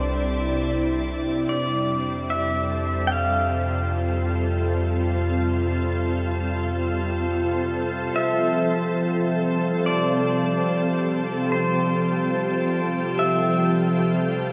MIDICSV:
0, 0, Header, 1, 5, 480
1, 0, Start_track
1, 0, Tempo, 823045
1, 877, Time_signature, 4, 2, 24, 8
1, 3280, Tempo, 841515
1, 6160, Tempo, 826446
1, 8397, End_track
2, 0, Start_track
2, 0, Title_t, "Pedal steel guitar"
2, 0, Program_c, 0, 26
2, 0, Note_on_c, 0, 72, 64
2, 614, Note_off_c, 0, 72, 0
2, 870, Note_on_c, 0, 74, 70
2, 1340, Note_off_c, 0, 74, 0
2, 1342, Note_on_c, 0, 76, 88
2, 1764, Note_off_c, 0, 76, 0
2, 1792, Note_on_c, 0, 79, 60
2, 1817, Note_off_c, 0, 79, 0
2, 1820, Note_on_c, 0, 77, 92
2, 4209, Note_off_c, 0, 77, 0
2, 4725, Note_on_c, 0, 76, 88
2, 5697, Note_on_c, 0, 74, 80
2, 5710, Note_off_c, 0, 76, 0
2, 6652, Note_on_c, 0, 72, 78
2, 6679, Note_off_c, 0, 74, 0
2, 7622, Note_on_c, 0, 76, 81
2, 7639, Note_off_c, 0, 72, 0
2, 8066, Note_off_c, 0, 76, 0
2, 8397, End_track
3, 0, Start_track
3, 0, Title_t, "Ambient pad"
3, 0, Program_c, 1, 92
3, 0, Note_on_c, 1, 48, 66
3, 0, Note_on_c, 1, 60, 82
3, 0, Note_on_c, 1, 62, 75
3, 0, Note_on_c, 1, 64, 80
3, 0, Note_on_c, 1, 74, 68
3, 867, Note_off_c, 1, 48, 0
3, 880, Note_off_c, 1, 64, 0
3, 1124, Note_on_c, 1, 69, 66
3, 1593, Note_off_c, 1, 62, 0
3, 1703, Note_on_c, 1, 65, 64
3, 1999, Note_off_c, 1, 74, 0
3, 4707, Note_on_c, 1, 53, 77
3, 4716, Note_off_c, 1, 65, 0
3, 6036, Note_on_c, 1, 67, 78
3, 8397, Note_off_c, 1, 53, 0
3, 8397, Note_off_c, 1, 60, 0
3, 8397, Note_off_c, 1, 67, 0
3, 8397, Note_off_c, 1, 69, 0
3, 8397, End_track
4, 0, Start_track
4, 0, Title_t, "Synth drone"
4, 0, Program_c, 2, 95
4, 0, Note_on_c, 2, 48, 62
4, 0, Note_on_c, 2, 55, 57
4, 4710, Note_off_c, 2, 55, 0
4, 4712, Note_off_c, 2, 48, 0
4, 4717, Note_on_c, 2, 55, 66
4, 4719, Note_on_c, 2, 48, 71
4, 8397, Note_off_c, 2, 48, 0
4, 8397, Note_off_c, 2, 55, 0
4, 8397, End_track
5, 0, Start_track
5, 0, Title_t, "Sub bass"
5, 0, Program_c, 3, 38
5, 0, Note_on_c, 3, 36, 76
5, 855, Note_off_c, 3, 36, 0
5, 878, Note_on_c, 3, 41, 77
5, 4699, Note_off_c, 3, 41, 0
5, 8397, End_track
0, 0, End_of_file